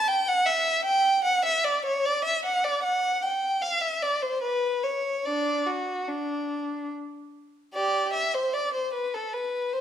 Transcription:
0.08 0.27 G5 medium
0.28 0.47 F#5 medium
0.46 0.85 E5 medium
0.85 1.24 G5 medium
1.24 1.44 F#5 medium
1.45 1.64 E5 medium
1.64 1.84 D5 medium
1.85 2.04 C#5 medium
2.05 2.25 D5 medium
2.25 2.44 E5 medium
2.45 2.64 F#5 medium
2.64 2.83 D5 medium
2.83 3.21 F#5 medium
3.22 3.61 G5 medium
3.62 3.81 F5 medium
3.81 4.01 E5 medium
4.02 4.22 D5 medium
4.22 4.42 C5 medium
4.42 4.82 B4 medium
4.84 5.25 C#5 medium
5.25 5.64 D4 soft
5.25 5.67 D5 medium
5.66 6.08 F#4 medium
6.08 6.91 D4 medium
7.74 8.11 G4 medium
7.74 8.11 D5 medium
8.13 8.33 E5 medium
8.34 8.54 C5 medium
8.53 8.73 D5 medium
8.74 8.93 C5 medium
8.94 9.13 B4 medium
9.14 9.33 A4 medium
9.33 9.72 B4 medium
9.73 9.81 C5 medium

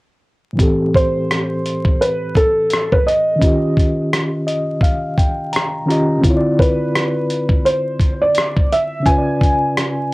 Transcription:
0.53 3.34 A2 medium
0.53 3.35 E3 medium
0.58 3.37 C4 medium
0.58 3.38 G4 medium
0.58 kick medium
0.58 closed hi-hat medium
0.63 3.39 A4 medium
0.94 2.04 C5 loud
0.94 kick medium
0.94 closed hi-hat medium
1.31 cross-stick loud
1.31 closed hi-hat medium
1.66 closed hi-hat medium
1.85 kick medium
2.01 2.37 B4 medium
2.01 closed hi-hat medium
2.35 2.93 A4 loud
2.35 kick medium
2.35 closed hi-hat medium
2.70 cross-stick medium
2.70 closed hi-hat medium
2.92 3.07 B4 medium
2.92 kick medium
3.07 3.73 D#5 medium
3.07 closed hi-hat medium
3.36 5.81 D#3 medium
3.36 5.83 C#4 medium
3.41 5.84 F4 medium
3.41 5.86 G4 medium
3.41 kick loud
3.41 closed hi-hat medium
3.47 4.46 D#5 medium
3.77 kick medium
3.77 closed hi-hat medium
4.13 cross-stick loud
4.13 closed hi-hat medium
4.47 4.80 D#5 medium
4.47 closed hi-hat medium
4.81 5.15 F5 medium
4.81 kick medium
4.81 closed hi-hat medium
5.18 5.50 G5 medium
5.18 kick medium
5.18 closed hi-hat medium
5.53 5.86 A#5 medium
5.53 cross-stick loud
5.53 closed hi-hat medium
5.86 6.22 D#3 medium
5.86 6.23 C#4 medium
5.86 6.24 F4 medium
5.86 6.21 A#5 medium
5.90 6.24 G4 medium
5.90 6.25 D#5 medium
5.90 closed hi-hat medium
6.18 8.99 D3 medium
6.18 9.01 C4 medium
6.24 9.02 E4 medium
6.24 9.04 F4 medium
6.24 kick medium
6.24 closed hi-hat medium
6.30 6.34 C#5 medium
6.37 9.08 D5 medium
6.59 7.68 B4 medium
6.59 kick medium
6.59 closed hi-hat medium
6.95 cross-stick loud
6.95 closed hi-hat medium
7.30 closed hi-hat medium
7.49 kick medium
7.65 8.22 C5 medium
7.65 closed hi-hat medium
8.00 kick medium
8.00 closed hi-hat medium
8.21 8.72 D5 loud
8.35 cross-stick loud
8.35 closed hi-hat medium
8.57 kick medium
8.72 9.08 E5 medium
8.72 closed hi-hat medium
9.00 10.14 C#3 medium
9.00 10.14 C#4 medium
9.06 10.14 F4 medium
9.06 10.14 B4 medium
9.06 10.14 G#5 loud
9.06 kick medium
9.06 closed hi-hat medium
9.12 9.16 C#5 medium
9.18 10.14 D5 medium
9.41 kick medium
9.41 closed hi-hat medium
9.77 cross-stick loud
9.77 closed hi-hat medium

